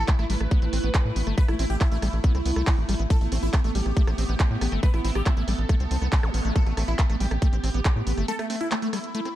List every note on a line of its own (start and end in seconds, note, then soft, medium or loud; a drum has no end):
0.00 9.35 A3 medium
0.00 3.12 E4 medium
0.08 0.12 A3 medium
0.08 0.14 E4 medium
0.08 kick loud
0.08 clap loud
0.08 closed hi-hat medium
0.19 0.26 A1 medium
0.19 0.25 A3 medium
0.19 0.25 E4 medium
0.19 cross-stick soft
0.19 closed hi-hat soft
0.30 0.36 A1 loud
0.30 0.36 G3 medium
0.30 1.29 B4 loud
0.30 open hi-hat loud
0.41 0.47 A1 medium
0.41 cross-stick medium
0.41 closed hi-hat soft
0.51 0.60 B3 medium
0.51 kick loud
0.51 closed hi-hat medium
0.62 0.69 A1 medium
0.62 0.66 C4 medium
0.62 closed hi-hat soft
0.73 0.80 A1 loud
0.73 0.79 C4 medium
0.73 cross-stick soft
0.73 open hi-hat loud
0.84 0.90 A1 medium
0.84 0.90 B3 medium
0.84 closed hi-hat soft
0.94 kick loud
0.94 cross-stick medium
0.94 clap loud
0.94 closed hi-hat medium
1.05 1.12 A2 medium
1.16 1.23 A1 loud
1.16 1.22 B3 medium
1.16 open hi-hat loud
1.27 1.34 G1 medium
1.27 1.36 A3 medium
1.27 cross-stick soft
1.27 closed hi-hat soft
1.38 1.41 A3 loud
1.38 1.44 B4 loud
1.38 kick loud
1.38 closed hi-hat medium
1.48 1.55 A1 medium
1.48 1.55 E4 medium
1.48 cross-stick medium
1.48 closed hi-hat soft
1.59 1.66 A1 loud
1.59 1.65 C4 medium
1.59 1.65 E4 medium
1.59 open hi-hat loud
1.70 1.77 A1 medium
1.70 1.76 G4 medium
1.70 closed hi-hat soft
1.81 1.84 A3 medium
1.81 1.87 E4 medium
1.81 kick loud
1.81 cross-stick soft
1.81 clap loud
1.81 closed hi-hat medium
1.92 1.98 A1 medium
1.92 1.98 A3 medium
1.92 1.98 E4 medium
1.92 closed hi-hat soft
2.02 2.09 A1 loud
2.02 2.08 G3 medium
2.02 3.02 E4 loud
2.02 cross-stick medium
2.02 open hi-hat loud
2.13 2.20 A1 medium
2.13 closed hi-hat soft
2.24 2.33 B3 medium
2.24 kick loud
2.24 closed hi-hat medium
2.35 2.41 C2 medium
2.35 2.38 C4 medium
2.35 cross-stick soft
2.35 closed hi-hat soft
2.46 2.52 C2 loud
2.46 2.52 B3 medium
2.46 open hi-hat loud
2.56 2.63 C2 medium
2.56 2.62 A3 medium
2.56 cross-stick medium
2.56 closed hi-hat soft
2.67 kick loud
2.67 clap loud
2.67 open hi-hat medium
2.78 2.85 A1 medium
2.89 2.95 A1 loud
2.89 2.95 G3 loud
2.89 cross-stick soft
2.89 open hi-hat loud
2.99 3.06 A1 loud
2.99 3.03 B3 medium
2.99 closed hi-hat soft
3.10 3.14 A3 loud
3.10 9.35 B3 medium
3.10 3.16 A4 loud
3.10 kick loud
3.10 closed hi-hat medium
3.21 3.28 A1 medium
3.21 3.27 A3 medium
3.21 closed hi-hat soft
3.32 3.39 A1 loud
3.32 3.38 A3 medium
3.32 3.38 C4 medium
3.32 cross-stick soft
3.32 open hi-hat loud
3.43 3.49 A1 medium
3.43 3.49 E4 medium
3.43 closed hi-hat soft
3.53 3.57 A3 medium
3.53 3.60 A3 medium
3.53 kick loud
3.53 cross-stick medium
3.53 clap loud
3.53 closed hi-hat medium
3.64 3.71 A1 medium
3.64 3.70 A3 medium
3.64 closed hi-hat soft
3.75 3.82 A1 loud
3.75 3.81 G3 medium
3.75 4.74 G4 loud
3.75 open hi-hat loud
3.86 3.93 A1 medium
3.86 cross-stick soft
3.86 closed hi-hat soft
3.97 4.03 A3 loud
3.97 kick loud
3.97 closed hi-hat medium
4.07 4.14 A1 medium
4.07 4.11 C4 medium
4.07 cross-stick medium
4.07 closed hi-hat soft
4.18 4.25 A1 loud
4.18 4.24 C4 medium
4.18 open hi-hat loud
4.29 4.36 A1 medium
4.29 4.35 B3 medium
4.29 closed hi-hat soft
4.40 kick loud
4.40 cross-stick soft
4.40 clap loud
4.40 closed hi-hat medium
4.51 4.57 A2 medium
4.61 4.68 A1 medium
4.61 4.67 B3 medium
4.61 cross-stick medium
4.61 open hi-hat loud
4.72 4.79 G1 medium
4.72 4.81 A3 medium
4.72 4.91 C4 medium
4.72 closed hi-hat soft
4.83 4.87 A3 loud
4.83 4.89 B4 loud
4.83 kick loud
4.83 closed hi-hat medium
4.94 5.00 A1 medium
4.94 5.00 E4 medium
4.94 cross-stick soft
4.94 closed hi-hat soft
5.05 5.11 A1 loud
5.05 5.11 C4 medium
5.05 5.11 E4 medium
5.05 open hi-hat loud
5.15 5.22 A1 medium
5.15 5.34 C4 loud
5.15 5.22 G4 medium
5.15 cross-stick medium
5.26 5.30 A3 medium
5.26 5.32 E4 medium
5.26 kick loud
5.26 clap loud
5.26 closed hi-hat medium
5.37 5.44 A1 medium
5.37 5.43 A3 medium
5.37 5.43 E4 medium
5.37 closed hi-hat soft
5.48 5.54 A1 loud
5.48 5.54 G3 medium
5.48 6.47 A4 loud
5.48 cross-stick soft
5.48 open hi-hat loud
5.59 5.65 A1 medium
5.59 closed hi-hat soft
5.69 5.75 A3 loud
5.69 kick loud
5.69 cross-stick medium
5.69 closed hi-hat medium
5.80 5.87 C2 medium
5.80 5.84 C4 medium
5.80 closed hi-hat soft
5.91 5.98 C2 loud
5.91 5.97 C4 medium
5.91 open hi-hat loud
6.02 6.08 C2 medium
6.02 6.08 B3 medium
6.02 cross-stick soft
6.02 closed hi-hat soft
6.12 kick loud
6.12 clap loud
6.12 open hi-hat medium
6.23 6.30 A1 medium
6.23 cross-stick medium
6.23 zap medium
6.34 6.41 A1 loud
6.34 6.40 B3 medium
6.34 open hi-hat loud
6.45 6.52 A1 medium
6.45 6.54 A3 medium
6.45 closed hi-hat soft
6.56 6.59 A3 loud
6.56 6.62 A4 loud
6.56 kick loud
6.56 cross-stick soft
6.56 closed hi-hat loud
6.66 6.73 A1 medium
6.66 6.73 A3 medium
6.66 closed hi-hat soft
6.77 6.84 A1 loud
6.77 6.83 A3 medium
6.77 6.83 C4 medium
6.77 cross-stick medium
6.77 open hi-hat loud
6.88 6.95 A1 medium
6.88 6.94 E4 medium
6.88 closed hi-hat soft
6.99 7.05 A3 medium
6.99 7.02 A3 medium
6.99 kick loud
6.99 clap loud
6.99 closed hi-hat loud
7.10 7.16 A1 medium
7.10 7.16 A3 medium
7.10 cross-stick soft
7.10 closed hi-hat soft
7.20 7.27 A1 loud
7.20 7.26 G3 medium
7.20 8.20 G4 loud
7.20 open hi-hat loud
7.31 7.38 A1 medium
7.31 cross-stick medium
7.31 closed hi-hat soft
7.42 7.48 A3 loud
7.42 kick loud
7.42 closed hi-hat loud
7.53 7.59 A1 medium
7.53 7.56 C4 medium
7.53 closed hi-hat soft
7.64 7.70 A1 loud
7.64 7.70 C4 medium
7.64 cross-stick soft
7.64 open hi-hat loud
7.74 7.81 A1 loud
7.74 7.80 B3 medium
7.74 closed hi-hat soft
7.85 kick loud
7.85 cross-stick medium
7.85 clap loud
7.85 closed hi-hat loud
7.96 8.03 A2 medium
8.07 8.13 A1 loud
8.07 8.13 B3 medium
8.07 open hi-hat loud
8.18 8.24 G1 medium
8.18 8.26 A3 medium
8.18 cross-stick soft
8.18 closed hi-hat soft
8.28 8.32 A3 loud
8.28 8.34 A4 loud
8.28 closed hi-hat loud
8.39 8.45 A3 medium
8.39 cross-stick medium
8.39 closed hi-hat soft
8.50 8.56 A3 medium
8.50 8.56 C4 medium
8.50 open hi-hat loud
8.61 8.67 E4 medium
8.61 closed hi-hat soft
8.71 8.75 A3 medium
8.71 8.78 A3 medium
8.71 cross-stick soft
8.71 clap loud
8.71 closed hi-hat loud
8.82 8.88 A3 medium
8.82 closed hi-hat soft
8.93 8.99 G3 medium
8.93 9.35 E4 loud
8.93 cross-stick medium
8.93 open hi-hat loud
9.04 closed hi-hat soft
9.15 9.21 A3 loud
9.15 closed hi-hat loud
9.25 9.29 C4 medium
9.25 cross-stick soft
9.25 closed hi-hat soft